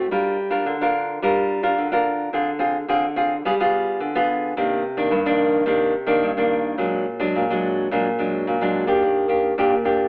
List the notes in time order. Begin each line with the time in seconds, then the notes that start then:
0.11 G3 D4 F4 A#4
0.50 D4 F4 A#4
0.66 D3
0.81 D4 F4 A#4
1.22 G3 D4 F4 A#4
1.63 D4 F4 A#4
1.78 D3
1.92 D4 F4 A#4
2.33 D3 C4 F4 G#4
2.59 C4 F4 G#4
2.88 D3 C4 F4 G#4
3.16 C4 F4 G#4
3.45 G3 B3 F4 G#4
3.60 B3 F4 G#4
4.00 D3
4.15 B3 F4 G#4
4.57 C3 D#3 A#3 D4
4.97 D#3 A#3 D4
5.11 G2
5.26 D#3 A#3 D4
5.66 C3 D#3 A#3 D4
6.07 D#3 A#3 D4
6.23 G2
6.37 D#3 A#3 D4
6.78 A#2 F#3 G#3 D4
7.20 F#3 G#3 D4
7.36 A#2
7.50 F#3 G#3 D4
7.91 A#2 F#3 G#3 D4
8.19 F#3 G#3 D4
8.47 A#2
8.61 F#3 G#3 D4
8.87 A#3 D4 G4
9.02 D#3
9.28 A#3 D4 G4
9.58 A#2 A#3 D4 G4
9.85 A#3 D4 G4